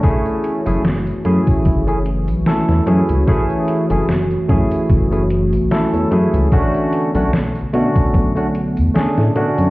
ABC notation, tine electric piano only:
X:1
M:4/4
L:1/16
Q:"Swing 16ths" 1/4=74
K:F#m
V:1 name="Tine electric piano"
[A,CEG]3 [A,CEG] z2 [A,CEG]3 [A,CEG] z2 [A,CEA]2 [A,CEG]2 | [A,CEG]3 [A,CEG] z2 [A,CEG]3 [A,CEG] z2 [A,CEA]2 [A,CEG]2 | [A,CDF]3 [A,CDF] z2 [A,CDF]3 [A,CDF] z2 [A,CDG]2 [A,CDF]2 |]